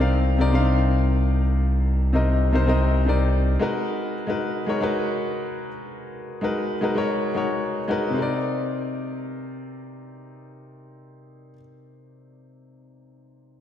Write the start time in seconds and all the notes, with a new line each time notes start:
Already playing: C2 D5
0.00 C3 C4 D#4 A#4 F5
0.38 C3 C4 D#4 A#4 D5
0.52 C3 C4 D4 A#4 F5
0.60 D#4
2.13 C3 C4 D#4 A#4 D#5
2.52 C3 C4 D#4 A#4 C5
2.66 C3 C4 D#4 A#4 D#5
3.06 C3 C4 D#4 A#4 D5
3.59 G#3 D#4 F#4 A#4 B4
4.27 G#3 D#4 F#4 A#4 B4
4.66 G#3 D#4 F#4 A#4 C#5
4.80 G#3 D#4 F#4 A#4 B4
6.41 G#3 D#4 F#4 A#4 B4
6.81 G#3 D#4 F#4 A#4 B4
6.95 G#3 D#4 F#4 A#4 C#5
7.34 G#3 D#4 F#4 A#4 C#5
7.88 G#3 D#4 F#4 A#4 B4
8.10 C3 C4
8.16 D#4 A#4
8.22 D5